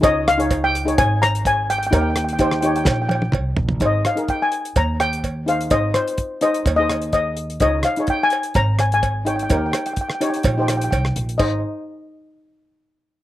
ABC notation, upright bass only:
X:1
M:4/4
L:1/8
Q:"Swing 16ths" 1/4=127
K:Ab
V:1 name="Upright bass" clef=bass
D,,4 A,,,4 | E,,4 B,,,2 C,, B,,, | A,,, z3 E,,4 | A,,, z3 E,,4 |
D,, z3 A,,,4 | E,, z3 B,,,2 C,, B,,, | A,,, z6 z |]